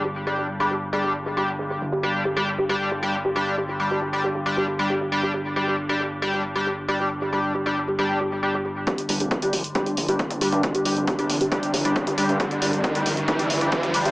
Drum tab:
HH |----------------|----------------|----------------|----------------|
T2 |----------------|----------------|----------------|----------------|
BD |----------------|----------------|----------------|----------------|

HH |----------------|xxoxxxoxxxoxxxox|xxoxxxoxxxoxxxox|xxoxxxoxxxoxxxox|
T2 |----------------|----o--------o-o|----o--------o-o|----o--------o-o|
BD |----------------|o---o---o---o---|o---o---o---o---|o---o---o---o---|